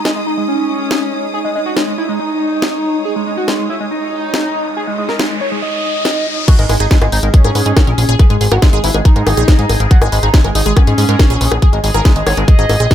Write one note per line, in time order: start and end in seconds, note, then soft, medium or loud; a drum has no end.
0.00 6.48 G#3 medium
0.00 6.49 D#4 medium
0.00 6.48 G#4 medium
0.00 1.08 D#5 medium
0.00 6.48 D#6 medium
0.05 0.10 G#3 medium
0.05 snare loud
0.16 0.21 G#3 medium
0.27 0.31 D#4 medium
0.37 0.42 G#3 medium
0.48 1.25 C#4 loud
0.91 snare loud
0.95 6.48 C#5 medium
1.34 1.39 G#4 loud
1.44 1.49 G#3 medium
1.55 1.60 G#3 medium
1.66 1.71 F#4 medium
1.77 1.81 G#3 medium
1.77 snare loud
1.87 1.92 G#3 medium
1.98 2.03 E4 medium
2.09 2.14 G#3 medium
2.19 2.97 D#4 loud
2.62 snare loud
3.05 3.10 G#4 loud
3.05 riser medium
3.16 3.21 G#3 medium
3.27 3.31 G#3 medium
3.37 3.42 F#4 medium
3.48 3.53 G#3 medium
3.48 snare loud
3.59 3.64 G#3 medium
3.70 3.74 E4 medium
3.80 3.85 G#3 medium
3.91 4.68 D#4 loud
4.34 snare loud
4.77 4.81 G#4 loud
4.87 4.92 G#3 medium
4.98 5.03 G#3 medium
5.09 5.14 A#4 medium
5.09 snare soft
5.19 5.24 G#3 medium
5.19 snare loud
5.30 5.35 G#3 medium
5.41 5.46 C#5 medium
5.52 5.56 G#3 medium
5.62 6.39 D#5 loud
6.05 snare loud
6.48 6.53 F#4 loud
6.48 6.52 G#4 medium
6.48 12.95 G#4 medium
6.48 kick loud
6.48 closed hi-hat medium
6.48 crash loud
6.59 6.65 G#1 medium
6.59 6.64 G#3 medium
6.59 6.63 A#4 medium
6.59 closed hi-hat medium
6.69 6.76 G#1 loud
6.69 6.74 G#3 medium
6.69 6.73 G#4 medium
6.69 open hi-hat loud
6.69 high bongo soft
6.80 6.87 G#1 medium
6.80 6.85 D#4 medium
6.80 6.86 G#4 loud
6.80 closed hi-hat medium
6.91 6.96 G#3 medium
6.91 6.95 B4 medium
6.91 kick loud
6.91 snare loud
6.91 closed hi-hat medium
7.02 7.08 G#1 medium
7.02 7.06 G#3 medium
7.02 7.04 G#4 medium
7.02 closed hi-hat medium
7.02 high bongo medium
7.12 7.19 G#1 loud
7.12 7.17 D#4 medium
7.12 7.16 G#4 medium
7.12 open hi-hat loud
7.23 7.30 G#1 loud
7.23 7.28 G#3 medium
7.23 7.27 A#4 medium
7.23 closed hi-hat medium
7.34 8.11 C#4 loud
7.34 7.38 G#4 medium
7.34 kick loud
7.34 closed hi-hat medium
7.44 7.51 G#2 medium
7.44 7.50 G#4 loud
7.44 closed hi-hat medium
7.44 high bongo soft
7.55 7.62 G#2 medium
7.55 7.59 B4 medium
7.55 open hi-hat loud
7.66 7.73 G#2 loud
7.66 7.68 G#4 medium
7.66 closed hi-hat medium
7.77 7.81 G#4 medium
7.77 kick loud
7.77 snare loud
7.77 closed hi-hat medium
7.77 high bongo medium
7.87 7.94 A#1 medium
7.87 7.91 A#4 medium
7.87 closed hi-hat medium
7.98 8.05 A#1 loud
7.98 8.02 G#4 medium
7.98 open hi-hat loud
8.09 8.15 A#1 medium
8.09 8.15 G#4 loud
8.09 closed hi-hat medium
8.19 8.24 G#4 loud
8.19 8.23 B4 medium
8.19 kick loud
8.19 closed hi-hat medium
8.19 high bongo soft
8.30 8.37 G#1 medium
8.30 8.35 G#3 medium
8.30 8.33 G#4 medium
8.30 closed hi-hat medium
8.41 8.48 G#1 loud
8.41 8.46 G#3 medium
8.41 8.45 G#4 medium
8.41 open hi-hat loud
8.52 8.58 G#1 medium
8.52 8.56 F#4 loud
8.52 8.56 A#4 medium
8.52 closed hi-hat medium
8.52 high bongo medium
8.62 8.67 G#3 medium
8.62 8.66 G#4 medium
8.62 kick loud
8.62 snare loud
8.62 closed hi-hat medium
8.73 8.80 G#1 medium
8.73 8.78 G#3 medium
8.73 8.79 G#4 loud
8.73 closed hi-hat medium
8.84 8.90 G#1 loud
8.84 8.89 E4 medium
8.84 8.88 B4 medium
8.84 open hi-hat loud
8.94 9.01 G#1 medium
8.94 8.99 G#3 medium
8.94 8.97 G#4 medium
8.94 closed hi-hat medium
8.94 high bongo soft
9.05 9.82 D#4 loud
9.05 9.09 G#4 medium
9.05 kick loud
9.05 closed hi-hat medium
9.16 9.23 G#2 medium
9.16 9.20 A#4 medium
9.16 closed hi-hat medium
9.27 9.33 G#1 loud
9.27 9.31 G#4 medium
9.27 open hi-hat loud
9.27 high bongo medium
9.37 9.44 A#1 loud
9.37 9.43 G#4 loud
9.37 closed hi-hat medium
9.48 9.52 B4 medium
9.48 kick loud
9.48 snare loud
9.48 closed hi-hat medium
9.59 9.65 G#2 medium
9.59 9.61 G#4 medium
9.59 closed hi-hat medium
9.69 9.76 G#1 loud
9.69 9.73 G#4 medium
9.69 open hi-hat loud
9.69 high bongo soft
9.80 9.87 G#1 medium
9.80 9.84 A#4 medium
9.80 closed hi-hat medium
9.91 9.96 F#4 loud
9.91 9.95 G#4 medium
9.91 kick loud
9.91 closed hi-hat medium
10.02 10.08 G#1 medium
10.02 10.06 G#3 medium
10.02 10.08 G#4 loud
10.02 closed hi-hat medium
10.02 high bongo medium
10.12 10.19 G#1 loud
10.12 10.17 G#3 medium
10.12 10.16 B4 medium
10.12 open hi-hat loud
10.23 10.30 G#1 medium
10.23 10.28 D#4 medium
10.23 10.25 G#4 medium
10.23 closed hi-hat medium
10.34 10.39 G#3 medium
10.34 10.38 G#4 medium
10.34 kick loud
10.34 snare loud
10.34 closed hi-hat medium
10.44 10.51 G#1 medium
10.44 10.49 G#3 medium
10.44 10.48 A#4 medium
10.44 closed hi-hat medium
10.44 high bongo soft
10.55 10.62 G#1 loud
10.55 10.60 D#4 medium
10.55 10.59 G#4 medium
10.55 open hi-hat loud
10.66 10.73 G#1 medium
10.66 10.71 G#3 medium
10.66 10.72 G#4 loud
10.66 closed hi-hat medium
10.77 11.54 C#4 loud
10.77 10.81 B4 medium
10.77 kick loud
10.77 closed hi-hat medium
10.77 high bongo medium
10.87 10.94 G#2 medium
10.87 10.90 G#4 medium
10.87 closed hi-hat medium
10.98 11.05 G#2 loud
10.98 11.02 G#4 medium
10.98 open hi-hat loud
11.09 11.15 G#2 medium
11.09 11.13 A#4 medium
11.09 closed hi-hat medium
11.19 11.23 G#4 medium
11.19 kick loud
11.19 snare loud
11.19 closed hi-hat medium
11.19 high bongo soft
11.30 11.37 A#1 medium
11.30 11.36 G#4 loud
11.30 closed hi-hat medium
11.41 11.48 A#1 loud
11.41 11.45 B4 medium
11.41 open hi-hat loud
11.52 11.58 A#1 loud
11.52 11.54 G#4 medium
11.52 high bongo medium
11.62 11.66 G#4 medium
11.62 11.67 G#4 loud
11.62 kick loud
11.62 closed hi-hat medium
11.73 11.80 G#1 medium
11.73 11.78 G#3 medium
11.73 11.77 A#4 medium
11.73 closed hi-hat medium
11.84 11.90 G#1 loud
11.84 11.89 G#3 medium
11.84 11.88 G#4 medium
11.84 open hi-hat loud
11.94 12.01 G#1 medium
11.94 12.00 G#4 loud
11.94 11.99 A#4 medium
11.94 closed hi-hat soft
11.94 high bongo soft
12.05 12.10 G#3 medium
12.05 12.09 B4 medium
12.05 kick loud
12.05 snare loud
12.05 closed hi-hat medium
12.16 12.23 G#1 medium
12.16 12.21 G#3 medium
12.16 12.18 G#4 medium
12.16 closed hi-hat medium
12.27 12.33 G#1 loud
12.27 12.31 G#4 medium
12.27 12.31 C#5 medium
12.27 open hi-hat loud
12.27 high bongo medium
12.37 12.44 G#1 loud
12.37 12.42 G#3 medium
12.37 12.41 A#4 medium
12.37 closed hi-hat medium
12.48 12.52 G#4 medium
12.48 12.95 D#5 loud
12.48 kick loud
12.48 closed hi-hat medium
12.59 12.65 G#1 medium
12.59 12.65 G#4 loud
12.59 closed hi-hat medium
12.69 12.76 G#1 loud
12.69 12.72 G#4 medium
12.69 open hi-hat loud
12.69 high bongo soft
12.80 12.87 A#1 medium
12.80 12.84 G#4 loud
12.80 closed hi-hat medium
12.91 12.95 G#4 medium
12.91 kick loud
12.91 snare loud
12.91 closed hi-hat medium